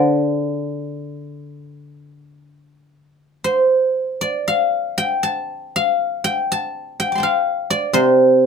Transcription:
Already playing: D3 A4 C5 D5
3.44 C5
4.21 D5
4.48 F5
4.98 G5
5.23 A5
5.76 F5
6.24 G5
6.52 A5
7.00 G5
7.12 C6 D6
7.18 G5 A5
7.23 F5
7.70 D5
7.93 C3 C5

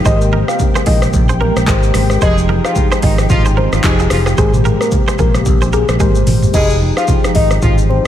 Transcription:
Already playing: G#3
0.04 G#1 C3 G#3 A#3 G4 G#4 A#4 C5 D#5 G5, kick, shaker
0.21 shaker
0.33 G4 A#4, high conga
0.48 F5, cross-stick, shaker
0.59 kick, low conga, shaker
0.75 G#4 C5, cross-stick, high conga, shaker
0.86 A#1 F4 G#4 D#5, kick, open hi-hat, high conga
1.02 cross-stick, shaker
1.13 A#1, kick, mid tom, low conga, shaker
1.29 G#4 C5, high conga, shaker
1.41 G4 A#4, high conga
1.56 A#1, cross-stick, shaker
1.66 G#1 G#3 D#4 G4 G#4 A#4 C5, kick, clap, shaker
1.83 shaker
1.94 G#1, cross-stick, open hi-hat, high conga, shaker
2.10 cross-stick, shaker
2.20 F1 F3 G#3 D#4 G4 G#4 C5 D#5, kick, shaker
2.38 shaker
2.49 G4 A#4, high conga
2.65 F3 F4 F5, cross-stick, shaker
2.75 kick, low conga, shaker
2.91 G#4 C5, cross-stick, high conga, shaker
3.02 G#1 D#3 D#4 F4 G#4 D#5, kick, open hi-hat, high conga
3.18 cross-stick, shaker
3.29 G#1 F3 F4, kick, mid tom, low conga, shaker
3.45 G#4 C5, high conga, shaker
3.57 G4 A#4 C5, high conga
3.72 G#1 F3 F4, cross-stick, shaker
3.83 F1 F3 G#3 D#4 G4 G#4, kick, clap, shaker
3.99 F4 G#4, shaker
4.10 F1 F3 F4, cross-stick, open hi-hat, high conga, shaker
4.26 F4 G#4, cross-stick, shaker
4.37 G#1 C3 G#3 A#3 G4 G#4 A#4 C5, kick, shaker
4.54 mid tom, shaker
4.65 G4 A#4, high conga, shaker
4.81 A#4, cross-stick, shaker
4.91 kick, low conga, shaker
5.07 G#4 C5, cross-stick, high conga, shaker
5.18 A#1 F4 G#4 A#4, kick, high conga, shaker
5.34 cross-stick, shaker
5.46 A#1, kick, low conga, shaker
5.62 G#4 C5, high conga, shaker
5.73 G4 G#4 A#4, high conga, shaker
5.89 A#1, cross-stick, shaker
5.99 G#1 G#3 D#4 G4 G#4 A#4 C5, kick, high tom, shaker
6.15 mid tom, shaker
6.27 G#1, mid tom, open hi-hat, high conga, shaker
6.43 floor tom, shaker
6.53 F1 F3 G#3 D#4 G4 G#4 D#5 G5, kick, crash, shaker
6.70 shaker
6.82 high conga
6.97 F3 F4 F5, cross-stick, shaker
7.08 kick, low conga, shaker
7.24 cross-stick, high conga, shaker
7.35 G#1 D#3 D#4 D#5, kick, open hi-hat, high conga
7.51 cross-stick, shaker
7.62 G#1 F3 F4, kick, mid tom, low conga, shaker
7.78 high conga, shaker
7.89 C5, high conga

